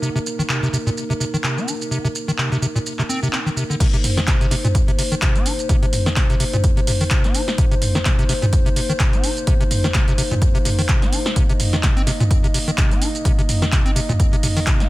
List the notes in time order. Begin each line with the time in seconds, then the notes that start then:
Already playing: A#3 D#4 A#4
0.02 C3, shaker
0.15 C3, shaker
0.27 shaker
0.39 D#3, shaker
0.49 C3, clap, shaker
0.63 C3, shaker
0.73 C3, shaker
0.87 A#2, shaker
0.97 shaker
1.10 C3, shaker
1.20 C3, shaker
1.34 D#3, shaker
1.44 C3, clap, shaker
1.57 C4, shaker
1.67 D#4, shaker
1.82 shaker
1.91 C3, shaker
2.05 C3, shaker
2.15 shaker
2.28 D#3, shaker
2.38 C3, clap, shaker
2.52 C3, shaker
2.62 C3, shaker
2.75 A#2, shaker
2.86 shaker
2.99 C3, clap, shaker
3.09 C4, shaker
3.23 C3, shaker
3.33 C4, clap, shaker
3.46 D#3, shaker
3.57 C3, shaker
3.70 D3, shaker
3.80 C3 A#3 D#4 C5, kick, closed hi-hat, crash, shaker
3.94 C3, closed hi-hat, shaker
4.04 mid tom, open hi-hat, shaker
4.17 D#3, snare, closed hi-hat, shaker
4.27 C3, kick, snare, clap, closed hi-hat, shaker
4.41 C3, closed hi-hat, shaker
4.51 C3, snare, open hi-hat, shaker
4.64 A#2, closed hi-hat, mid tom, shaker
4.75 kick, closed hi-hat, shaker
4.88 C3, closed hi-hat, shaker
4.98 C3, open hi-hat, shaker
5.12 D#3, closed hi-hat, shaker
5.22 C3, kick, clap, closed hi-hat, shaker
5.35 C4, closed hi-hat, shaker
5.46 D#4, open hi-hat, shaker
5.59 closed hi-hat, shaker
5.69 C3, kick, closed hi-hat, shaker
5.83 C3, closed hi-hat, shaker
5.93 mid tom, open hi-hat, shaker
6.06 D#3, snare, closed hi-hat, shaker
6.16 C3, kick, snare, clap, closed hi-hat, shaker
6.30 C3, closed hi-hat, shaker
6.40 C3, open hi-hat, shaker
6.53 A#2, closed hi-hat, mid tom, shaker
6.64 kick, closed hi-hat, shaker
6.77 C3, closed hi-hat, shaker
6.87 C3, mid tom, open hi-hat, shaker
7.01 D#3, open hi-hat, shaker
7.10 C3, kick, clap, closed hi-hat, shaker
7.24 C4, snare, closed hi-hat, shaker
7.35 D#4, open hi-hat, shaker
7.48 snare, shaker
7.58 C3, kick, closed hi-hat, shaker
7.71 C3, closed hi-hat, shaker
7.82 mid tom, open hi-hat, shaker
7.95 D#3, snare, closed hi-hat, shaker
8.05 C3, kick, snare, clap, closed hi-hat, shaker
8.19 C3, closed hi-hat, shaker
8.29 C3, snare, open hi-hat, shaker
8.42 A#2, closed hi-hat, mid tom, shaker
8.53 kick, closed hi-hat, shaker
8.66 C3, closed hi-hat, shaker
8.76 C3, open hi-hat, shaker
8.89 D#3, closed hi-hat, shaker
9.00 C3, kick, clap, closed hi-hat, shaker
9.13 C4, closed hi-hat, shaker
9.23 D#4, open hi-hat, shaker
9.37 closed hi-hat, shaker
9.47 C3, kick, closed hi-hat, shaker
9.60 C3, closed hi-hat, shaker
9.71 mid tom, open hi-hat, shaker
9.84 D#3, snare, closed hi-hat, shaker
9.94 C3, kick, snare, clap, closed hi-hat, shaker
10.08 C3, closed hi-hat, shaker
10.18 C3, open hi-hat, shaker
10.31 A#2, closed hi-hat, mid tom, shaker
10.42 kick, closed hi-hat, shaker
10.55 C3, closed hi-hat, shaker
10.65 C3, mid tom, open hi-hat, shaker
10.79 D#3, open hi-hat, shaker
10.89 C3, kick, clap, closed hi-hat, shaker
11.02 C4, snare, closed hi-hat, shaker
11.12 D#4, open hi-hat, shaker
11.26 snare, closed hi-hat, shaker
11.36 C3 D#5, kick, closed hi-hat, shaker
11.49 C3, closed hi-hat, shaker
11.60 mid tom, open hi-hat, shaker
11.73 D#3, snare, closed hi-hat, shaker
11.83 C3, kick, snare, clap, closed hi-hat, shaker
11.97 C4, closed hi-hat, shaker
12.07 C3, snare, open hi-hat, shaker
12.20 A#2, closed hi-hat, mid tom, shaker
12.31 kick, closed hi-hat, shaker
12.44 C3, closed hi-hat, shaker
12.54 C3, open hi-hat, shaker
12.68 D#3, closed hi-hat, shaker
12.78 C3, kick, clap, closed hi-hat, shaker
12.91 C4, closed hi-hat, shaker
13.01 D#4, open hi-hat, shaker
13.15 closed hi-hat, shaker
13.25 C3, kick, closed hi-hat, shaker
13.38 C3, closed hi-hat, shaker
13.49 mid tom, open hi-hat, shaker
13.62 D#3, snare, closed hi-hat, shaker
13.72 C3, kick, snare, clap, closed hi-hat, shaker
13.86 C4, closed hi-hat, shaker
13.96 C3, open hi-hat, shaker
14.09 A#2, closed hi-hat, mid tom, shaker
14.20 kick, closed hi-hat, shaker
14.33 C3, closed hi-hat, shaker
14.43 C3, mid tom, open hi-hat, shaker
14.57 D#3, open hi-hat, shaker
14.67 C3, kick, clap, closed hi-hat, shaker
14.80 C4, snare, closed hi-hat, shaker